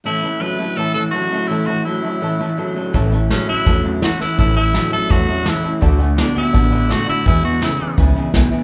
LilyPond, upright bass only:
\new Staff \with { instrumentName = "Upright bass" } { \clef bass \time 4/4 \key a \major \tempo 4 = 167 r1 | r1 | a,,4. r8 e,4. r8 | a,,4. r8 e,4. r8 |
d,4. r8 a,,4. r8 | e,4. r8 cis,8 r8 b,,8 r8 | }